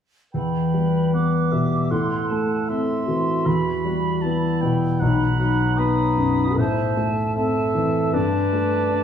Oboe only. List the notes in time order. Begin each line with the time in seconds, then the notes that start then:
0.34 G5
1.14 F#5
1.52 E5
1.91 F#5
2.69 E5
3.47 B5
4.22 A5
4.61 G5
5.00 F#5
5.40 F#5
5.79 B5
6.58 E5
7.36 E5
8.14 D5